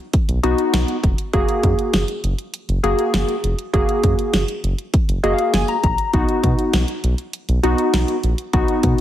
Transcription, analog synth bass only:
0.28 0.39 B1 medium
0.43 0.54 B1 loud
0.73 0.84 B1 loud
1.04 1.14 F1 medium
1.34 1.44 F#1 loud
1.63 1.74 F#2 loud
1.94 2.04 F#1 loud
2.24 2.34 F#1 loud
2.69 2.79 F#1 medium
2.84 2.94 F#1 loud
3.14 3.24 F#1 medium
3.44 3.54 F1 medium
3.74 3.84 F#1 loud
4.04 4.14 F#2 loud
4.33 4.44 F#1 loud
4.63 4.74 F#1 loud
5.08 5.19 F#1 medium
5.23 5.34 F#1 loud
5.53 5.64 F#1 loud
5.84 5.94 A#1 medium
6.14 6.24 B1 loud
6.44 6.54 B2 loud
6.74 6.84 B1 loud
7.04 7.14 B1 loud
7.49 7.59 B1 medium
7.64 7.74 B1 loud
7.94 8.04 B1 medium
8.23 8.34 A#1 loud
8.53 8.64 B1 loud
8.83 8.94 B2 loud

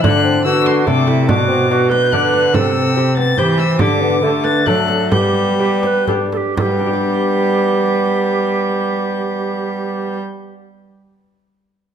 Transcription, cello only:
0.03 0.44 D3 medium
0.45 0.89 D3 medium
0.87 1.31 C3 medium
1.29 2.14 B2 medium
2.13 2.56 D3 medium
2.55 3.38 C3 medium
3.38 3.82 E3 medium
3.81 4.23 D3 medium
4.24 4.68 D3 medium
4.67 5.13 F#3 medium
5.12 6.33 G3 medium
6.58 10.18 G3 medium

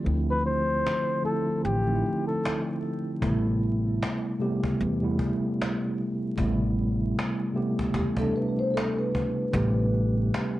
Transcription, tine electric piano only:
0.00 0.04 D3 medium
0.00 0.05 F3 medium
0.00 0.05 A3 medium
0.00 0.06 C4 medium
0.00 0.07 E4 medium
0.00 3.24 F4 medium
0.00 3.24 G4 medium
0.04 0.82 D3 medium
0.04 0.83 F3 medium
0.04 0.83 A3 medium
0.04 0.83 C4 medium
0.04 0.84 E4 medium
1.22 1.62 D3 medium
1.22 1.62 F3 medium
1.22 1.62 A3 medium
1.22 1.63 C4 medium
1.22 1.63 E4 medium
1.86 2.74 D3 medium
1.86 2.74 F3 medium
1.86 2.75 A3 medium
1.86 2.75 C4 medium
1.86 1.93 D#4 medium
1.95 2.79 E4 medium
3.20 3.98 C3 medium
3.20 3.99 G3 medium
3.20 3.99 A3 medium
3.20 3.99 B3 medium
3.20 4.00 E4 medium
4.39 4.78 C3 medium
4.39 4.78 G3 medium
4.39 4.79 A3 medium
4.39 4.79 B3 medium
4.39 4.79 G4 medium
5.01 5.90 C3 medium
5.01 5.90 G3 medium
5.01 5.91 A3 medium
5.01 5.91 B3 medium
5.01 5.91 E4 medium
6.36 7.14 C3 loud
6.36 7.15 G3 medium
6.36 7.15 A3 medium
6.36 7.15 B3 medium
6.36 7.16 E4 medium
7.53 7.93 C3 medium
7.53 7.94 G3 medium
7.53 7.94 A3 medium
7.53 7.94 B3 medium
7.53 7.95 G4 medium
8.18 9.06 C3 medium
8.18 9.07 G3 medium
8.18 9.07 A3 medium
8.18 9.07 B3 medium
8.18 9.08 D4 loud
9.52 10.30 C3 medium
9.52 10.30 G3 medium
9.52 10.31 A3 medium
9.52 10.31 B3 medium
9.52 10.31 G4 medium

